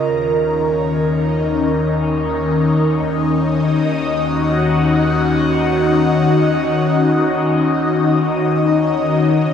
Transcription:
0.00 9.33 D#2 medium
0.00 2.78 A#4 medium
0.04 9.39 D#3 medium
0.32 9.54 C#4 medium
0.74 9.54 D#4 medium
3.28 9.54 D#5 medium
3.97 9.38 F#4 medium
9.38 9.54 C#2 medium
9.38 9.54 C#3 medium

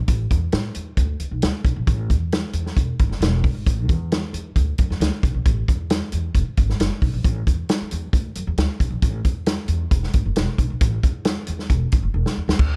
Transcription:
0.08 0.24 A1 loud
0.08 kick medium
0.08 closed hi-hat medium
0.31 0.47 E2 medium
0.31 kick medium
0.31 closed hi-hat medium
0.52 0.69 A2 medium
0.52 snare loud
0.52 closed hi-hat medium
0.75 0.92 E2 medium
0.75 closed hi-hat medium
0.97 1.14 D2 medium
0.97 kick medium
0.97 closed hi-hat medium
1.20 1.28 C#2 medium
1.20 closed hi-hat medium
1.31 1.40 B1 medium
1.42 1.51 D2 medium
1.42 snare loud
1.42 closed hi-hat medium
1.65 1.73 B1 medium
1.65 kick medium
1.65 closed hi-hat medium
1.76 1.84 A#1 medium
1.87 2.12 A1 loud
1.87 kick loud
1.87 closed hi-hat medium
2.10 2.42 E2 medium
2.10 kick medium
2.10 closed hi-hat medium
2.32 snare loud
2.32 closed hi-hat medium
2.53 2.70 E2 medium
2.53 closed hi-hat medium
2.66 snare soft
2.77 2.93 E1 medium
2.77 kick medium
2.77 closed hi-hat medium
2.99 3.08 G#1 medium
2.99 kick medium
2.99 closed hi-hat medium
3.09 3.18 F#1 medium
3.09 snare soft
3.21 3.45 E1 loud
3.21 snare loud
3.21 closed hi-hat medium
3.44 kick medium
3.44 open hi-hat soft
3.55 3.63 G#1 medium
3.66 3.89 A1 loud
3.66 kick medium
3.66 closed hi-hat medium
3.89 4.22 E2 medium
3.89 kick medium
3.89 closed hi-hat medium
4.12 snare loud
4.12 closed hi-hat medium
4.33 4.49 E2 medium
4.33 closed hi-hat medium
4.56 4.72 D2 medium
4.56 kick medium
4.56 closed hi-hat medium
4.78 4.87 F#2 medium
4.78 kick medium
4.78 closed hi-hat medium
4.90 4.98 E2 medium
4.90 snare soft
5.00 5.08 D2 medium
5.00 snare loud
5.00 closed hi-hat medium
5.23 5.31 B1 medium
5.23 kick medium
5.23 closed hi-hat medium
5.34 5.42 A#1 medium
5.45 5.62 A1 medium
5.45 kick loud
5.45 closed hi-hat medium
5.68 6.00 E2 medium
5.68 kick medium
5.68 closed hi-hat medium
5.90 snare loud
5.90 closed hi-hat medium
6.12 6.29 E2 medium
6.12 closed hi-hat medium
6.34 6.43 E1 medium
6.34 kick medium
6.34 closed hi-hat medium
6.47 muted upright bass stroke soft
6.57 6.74 G#1 medium
6.57 kick medium
6.57 closed hi-hat medium
6.69 snare soft
6.80 6.88 F#1 loud
6.80 snare loud
6.80 closed hi-hat medium
7.02 7.10 B1 medium
7.02 kick medium
7.02 open hi-hat soft
7.13 7.21 A#1 medium
7.24 7.40 A1 loud
7.24 kick loud
7.24 closed hi-hat medium
7.47 7.63 E2 medium
7.47 kick medium
7.47 closed hi-hat medium
7.69 snare loud
7.69 closed hi-hat medium
7.81 muted upright bass stroke soft
7.91 8.08 E2 medium
7.91 closed hi-hat medium
8.13 8.29 D2 medium
8.13 kick medium
8.13 closed hi-hat medium
8.35 8.44 F#2 medium
8.35 closed hi-hat medium
8.47 8.55 E2 medium
8.58 8.66 D2 medium
8.58 snare loud
8.58 closed hi-hat medium
8.80 8.88 B1 medium
8.80 kick medium
8.80 closed hi-hat medium
8.90 8.99 A#1 medium
9.02 9.19 A1 loud
9.02 kick loud
9.02 closed hi-hat medium
9.24 9.57 E2 medium
9.24 kick medium
9.24 closed hi-hat medium
9.46 snare loud
9.46 closed hi-hat medium
9.68 9.85 E2 medium
9.68 closed hi-hat medium
9.91 10.08 E1 medium
9.91 kick medium
9.91 closed hi-hat medium
10.03 snare soft
10.13 10.22 G#1 medium
10.13 kick medium
10.13 closed hi-hat medium
10.26 10.33 F#1 medium
10.36 10.45 E1 medium
10.36 snare loud
10.36 closed hi-hat medium
10.58 10.67 B1 medium
10.58 kick medium
10.58 closed hi-hat medium
10.70 10.78 A#1 medium
10.81 10.97 A1 loud
10.81 kick loud
10.81 closed hi-hat medium
11.03 11.36 E2 medium
11.03 kick medium
11.03 closed hi-hat medium
11.25 snare loud
11.25 closed hi-hat medium
11.47 11.64 E2 medium
11.47 closed hi-hat medium
11.59 snare soft
11.70 11.86 E1 medium
11.70 kick medium
11.70 closed hi-hat medium
11.92 12.01 G#1 medium
11.92 kick medium
11.92 closed hi-hat medium
12.03 12.11 F#1 medium
12.14 12.22 E1 medium
12.26 snare medium
12.37 12.45 E2 medium
12.48 12.56 D#2 medium
12.48 snare medium
12.59 12.75 D2 loud
12.59 kick loud
12.59 crash medium

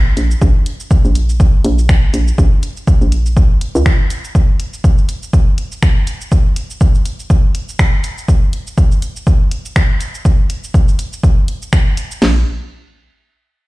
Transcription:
0.00 0.12 A#1 loud
0.17 0.36 A#1 medium
0.17 closed hi-hat medium
0.17 shaker soft
0.31 shaker medium
0.42 0.52 A#1 loud
0.42 kick loud
0.42 shaker soft
0.66 closed hi-hat loud
0.80 shaker soft
0.91 kick loud
0.91 shaker soft
1.05 1.60 A#1 medium
1.05 shaker soft
1.15 closed hi-hat loud
1.15 shaker soft
1.29 shaker soft
1.40 kick loud
1.40 shaker soft
1.64 2.09 A#1 loud
1.64 closed hi-hat medium
1.79 shaker soft
1.89 finger snap loud
1.89 kick loud
1.89 shaker medium
2.14 2.33 A#1 medium
2.14 closed hi-hat medium
2.14 shaker soft
2.28 shaker soft
2.38 2.48 A#1 loud
2.38 kick loud
2.38 shaker soft
2.63 closed hi-hat loud
2.63 shaker soft
2.77 shaker soft
2.87 kick loud
2.87 shaker medium
3.01 3.57 A#1 medium
3.01 shaker soft
3.12 closed hi-hat medium
3.12 shaker soft
3.26 shaker soft
3.37 kick loud
3.37 shaker soft
3.61 closed hi-hat medium
3.75 3.83 C#2 loud
3.75 shaker soft
3.86 finger snap loud
3.86 kick loud
3.86 shaker soft
4.10 closed hi-hat medium
4.10 shaker soft
4.24 shaker soft
4.35 kick loud
4.35 shaker soft
4.60 closed hi-hat loud
4.74 shaker soft
4.84 kick loud
4.84 shaker medium
4.98 shaker soft
5.09 closed hi-hat medium
5.09 shaker soft
5.23 shaker soft
5.33 kick loud
5.33 shaker soft
5.58 closed hi-hat medium
5.72 shaker soft
5.83 finger snap loud
5.83 kick loud
5.83 shaker medium
6.07 closed hi-hat medium
6.07 shaker soft
6.21 shaker soft
6.32 kick loud
6.32 shaker medium
6.56 closed hi-hat medium
6.56 shaker soft
6.70 shaker soft
6.81 kick loud
6.81 shaker medium
6.95 shaker soft
7.06 closed hi-hat medium
7.06 shaker soft
7.20 shaker soft
7.30 kick loud
7.30 shaker soft
7.55 closed hi-hat medium
7.69 shaker soft
7.79 finger snap loud
7.79 kick loud
7.79 shaker medium
8.04 closed hi-hat medium
8.04 shaker soft
8.18 shaker soft
8.28 kick loud
8.28 shaker medium
8.53 closed hi-hat medium
8.67 shaker soft
8.78 kick loud
8.78 shaker medium
8.92 shaker soft
9.02 closed hi-hat medium
9.02 shaker soft
9.16 shaker soft
9.27 kick loud
9.27 shaker medium
9.51 closed hi-hat medium
9.65 shaker soft
9.76 finger snap loud
9.76 kick loud
9.76 shaker medium
10.01 closed hi-hat medium
10.01 shaker soft
10.15 shaker medium
10.25 kick loud
10.25 shaker medium
10.50 closed hi-hat medium
10.50 shaker soft
10.64 shaker soft
10.74 kick loud
10.74 shaker medium
10.88 shaker soft
10.99 closed hi-hat medium
10.99 shaker soft
11.13 shaker soft
11.23 kick loud
11.23 shaker medium
11.48 closed hi-hat medium
11.62 shaker soft
11.73 finger snap loud
11.73 kick loud
11.73 shaker medium
11.97 closed hi-hat medium
11.97 shaker soft
12.11 shaker medium
12.22 12.45 A#1 loud
12.22 snare loud
12.22 crash medium

